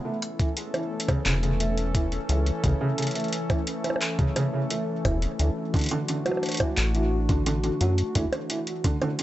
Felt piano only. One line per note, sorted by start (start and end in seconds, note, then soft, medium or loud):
0.05 0.15 A3 medium
0.40 0.46 E3 medium
0.74 0.80 E3 medium
1.08 1.19 C#3 medium
1.26 1.32 C#3 loud
1.43 1.49 C#3 medium
1.60 1.70 A3 medium
1.95 2.01 E3 medium
2.29 2.35 E3 medium
2.64 2.74 C#3 medium
2.81 2.87 C#3 loud
2.98 3.04 C#3 medium
3.15 3.25 A3 medium
3.50 3.56 E3 medium
3.84 3.90 E3 medium
4.19 4.29 C#3 medium
4.36 4.42 C#3 loud
4.53 4.59 C#3 medium
4.71 4.81 A3 medium
5.05 5.11 E3 medium
5.40 5.46 E3 medium
5.74 5.84 D3 medium
5.91 5.97 D3 loud
6.08 6.15 D3 medium
6.26 6.36 F#3 medium
6.60 6.66 E3 medium
6.95 7.01 E3 medium
7.29 7.39 D3 medium
7.46 7.52 D3 loud
7.64 7.70 D3 medium
7.81 7.91 F#3 medium
8.15 8.21 E3 medium
8.50 8.56 E3 medium
8.84 8.94 D3 medium
9.02 9.08 D3 loud
9.19 9.23 D3 medium